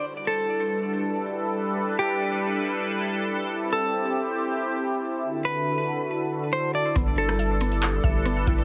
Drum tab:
HH |----------------|----------------|----------------|----------------|
CP |----------------|----------------|----------------|----------------|
SD |----------------|----------------|----------------|----------------|
BD |----------------|----------------|----------------|----------------|

HH |x---x-xxx---x---|
CP |--------x-------|
SD |---r------------|
BD |o---------o---o-|